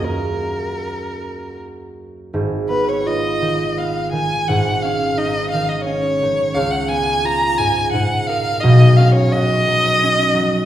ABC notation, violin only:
X:1
M:3/4
L:1/16
Q:1/4=86
K:G#dor
V:1 name="Violin"
A8 z4 | z2 B c d4 e2 g2 | f2 e2 d2 e d c4 | e f g2 a2 g2 f2 e2 |
d2 e c d8 |]